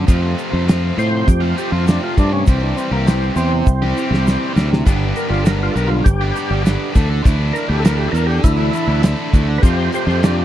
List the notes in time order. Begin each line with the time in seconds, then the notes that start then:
0.06 F2 C3 F3 A3 C4 F4 C5, kick, closed hi-hat, shaker
0.38 closed hi-hat, shaker
0.51 F2 F3 A3 C4 F4
0.65 F2 C3 F3 A3 C4 F4, snare, closed hi-hat, shaker
0.96 A2 F3 A3 C4 F4 C5, closed hi-hat, shaker
1.11 muted distorted electric guitar stroke
1.27 F2 G4, kick, closed hi-hat, shaker
1.41 F3 A3 C4 F4
1.56 F3 A3 C4 F4 G4, closed hi-hat, shaker
1.71 F2 F3 A3 C4 F4
1.86 F2 C3 F3 A3 C4 D4 F4, snare, closed hi-hat, shaker
2.04 F4
2.17 G2 F3 A3 C4 D4 F4, kick, closed hi-hat, shaker
2.33 C#4, muted distorted electric guitar stroke
2.45 C2 C3 E3 G3 C4 E4 G4 C5, kick, closed hi-hat, shaker
2.63 D4
2.77 C4, closed hi-hat, shaker
2.91 C2 G3 A#3 C4 G4
3.05 C3 E3 G3 C4 G4, snare, closed hi-hat, shaker
3.36 E2 E3 G3 C4 G4, closed hi-hat, shaker
3.53 muted distorted electric guitar stroke
3.67 C2, kick, shaker
3.82 G3 C4 G4, high tom
3.97 E3 G3 C4 G4, shaker
4.11 C2 G3 C4 G4, snare
4.25 C3 E3 G3 C4 G4, snare, shaker
4.56 D2 E3 G3 C4 G4, snare, shaker
4.71 muted distorted electric guitar stroke, snare
4.85 G1 G2 D3 G3 B3 D4 G4 B4, kick, closed hi-hat, crash, shaker
5.16 A#4, closed hi-hat, shaker
5.29 G1 G3 B3 D4 F4 G4, snare
5.42 G2 D3 G3 B3 D4 A4, closed hi-hat, shaker
5.47 G4 A#4, snare
5.63 F4
5.71 G3 A4
5.76 B1 B3 D4 G4 A#4, closed hi-hat, shaker
5.88 F4, muted distorted electric guitar stroke
6.04 G1 G4, kick, closed hi-hat, shaker
6.21 G3 B3 D4 G4
6.34 G3 B3 D4 G4, closed hi-hat, shaker
6.49 G1 G3 B3 D4 G4
6.64 G2 D3 G3 B3 D4 G4, snare, closed hi-hat, shaker
6.93 D2 D3 E3 A3 D4 E4 A4, kick, closed hi-hat, shaker
7.10 muted distorted electric guitar stroke
7.23 D2 D3 A3 D4 E4, kick, closed hi-hat, shaker
7.53 A#4, closed hi-hat, shaker
7.68 D2 A3 D4 E4 G4
7.80 D3 A3 A4
7.84 D4 E4 A#4, snare, closed hi-hat, shaker
7.97 G4
8.08 A4 A#4
8.13 E2 D3 A3 D4 E4, closed hi-hat, shaker
8.27 G4, muted distorted electric guitar stroke
8.44 D2 E4, kick, closed hi-hat, shaker
8.57 A3 D4 E4
8.73 D3 A3 D4 E4, closed hi-hat, shaker
8.88 D2 A3 D4 E4
9.03 D3 A3 D4 E4, snare, closed hi-hat, shaker
9.32 D2 D3 A3 D4 E4, kick, closed hi-hat, shaker
9.48 muted distorted electric guitar stroke
9.58 F2 C3 F3 C4 G4 A4 B4
9.63 F2 F3 A3 C4 F4 C5, kick, closed hi-hat, shaker
9.93 G4 C5, closed hi-hat, shaker
10.06 F2 F3 A3 C4 F4, snare
10.22 F2 C3 F3 A3 C4 D4 F4 G4, snare, closed hi-hat, shaker